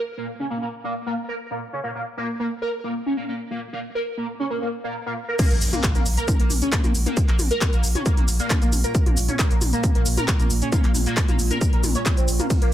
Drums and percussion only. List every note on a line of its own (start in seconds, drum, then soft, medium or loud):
5.39 kick loud
5.39 closed hi-hat medium
5.39 mid tom medium
5.39 crash loud
5.39 shaker soft
5.51 closed hi-hat medium
5.61 open hi-hat loud
5.61 shaker medium
5.73 closed hi-hat medium
5.73 mid tom medium
5.73 shaker soft
5.83 kick loud
5.83 clap loud
5.83 closed hi-hat loud
5.83 shaker soft
5.95 closed hi-hat medium
5.95 mid tom medium
5.95 shaker soft
6.06 open hi-hat medium
6.06 shaker medium
6.17 closed hi-hat medium
6.17 shaker soft
6.28 kick loud
6.28 closed hi-hat loud
6.28 mid tom medium
6.28 shaker soft
6.40 closed hi-hat medium
6.50 open hi-hat loud
6.50 mid tom medium
6.50 shaker medium
6.62 closed hi-hat medium
6.62 shaker soft
6.72 kick loud
6.72 clap loud
6.72 closed hi-hat loud
6.72 shaker soft
6.84 closed hi-hat medium
6.84 mid tom medium
6.84 shaker soft
6.95 open hi-hat medium
6.95 shaker medium
7.06 closed hi-hat medium
7.06 mid tom medium
7.06 shaker soft
7.17 kick loud
7.17 closed hi-hat loud
7.17 shaker soft
7.28 clap soft
7.28 closed hi-hat medium
7.39 open hi-hat loud
7.39 mid tom medium
7.39 shaker medium
7.51 closed hi-hat medium
7.51 shaker soft
7.61 kick loud
7.61 clap loud
7.61 closed hi-hat loud
7.61 mid tom medium
7.61 shaker soft
7.73 closed hi-hat medium
7.73 shaker soft
7.83 open hi-hat medium
7.83 shaker medium
7.95 closed hi-hat medium
7.95 mid tom medium
7.95 shaker soft
8.06 kick loud
8.06 closed hi-hat loud
8.06 shaker soft
8.17 closed hi-hat medium
8.17 mid tom medium
8.28 open hi-hat loud
8.28 shaker medium
8.40 closed hi-hat medium
8.40 shaker soft
8.50 kick loud
8.50 clap loud
8.50 closed hi-hat loud
8.50 mid tom loud
8.50 shaker soft
8.62 closed hi-hat medium
8.62 shaker soft
8.72 open hi-hat loud
8.72 mid tom medium
8.72 shaker medium
8.84 closed hi-hat medium
8.84 shaker soft
8.95 kick loud
8.95 closed hi-hat loud
8.95 shaker soft
9.06 closed hi-hat medium
9.06 mid tom loud
9.17 open hi-hat loud
9.17 shaker medium
9.28 closed hi-hat medium
9.28 mid tom medium
9.28 shaker soft
9.39 kick loud
9.39 clap loud
9.39 closed hi-hat loud
9.39 shaker soft
9.51 closed hi-hat medium
9.51 shaker soft
9.61 open hi-hat loud
9.61 mid tom medium
9.61 shaker medium
9.73 closed hi-hat medium
9.73 shaker soft
9.84 kick loud
9.84 closed hi-hat loud
9.84 mid tom medium
9.84 shaker soft
9.95 closed hi-hat medium
10.06 open hi-hat loud
10.06 shaker medium
10.17 closed hi-hat medium
10.17 mid tom loud
10.17 shaker soft
10.28 kick loud
10.28 clap loud
10.28 closed hi-hat loud
10.28 shaker soft
10.40 closed hi-hat medium
10.40 mid tom medium
10.40 shaker soft
10.50 open hi-hat loud
10.50 shaker medium
10.62 closed hi-hat medium
10.62 shaker soft
10.72 kick loud
10.72 closed hi-hat medium
10.72 mid tom loud
10.72 shaker soft
10.84 clap soft
10.84 closed hi-hat medium
10.95 open hi-hat loud
10.95 mid tom medium
10.95 shaker medium
11.06 closed hi-hat medium
11.06 shaker soft
11.17 kick loud
11.17 clap loud
11.17 closed hi-hat medium
11.17 shaker soft
11.28 closed hi-hat medium
11.28 mid tom medium
11.28 shaker soft
11.39 open hi-hat medium
11.39 shaker medium
11.51 closed hi-hat medium
11.51 mid tom medium
11.51 shaker soft
11.61 kick loud
11.61 closed hi-hat medium
11.61 shaker soft
11.73 closed hi-hat soft
11.83 open hi-hat loud
11.83 mid tom loud
11.83 shaker medium
11.95 closed hi-hat medium
11.95 shaker soft
12.06 kick loud
12.06 clap loud
12.06 closed hi-hat medium
12.06 mid tom medium
12.06 shaker soft
12.17 closed hi-hat medium
12.17 shaker soft
12.28 open hi-hat loud
12.28 shaker medium
12.40 closed hi-hat medium
12.40 mid tom loud
12.40 shaker soft
12.50 kick loud
12.50 closed hi-hat medium
12.50 mid tom medium
12.50 ride medium
12.50 shaker soft
12.62 closed hi-hat medium
12.62 ride medium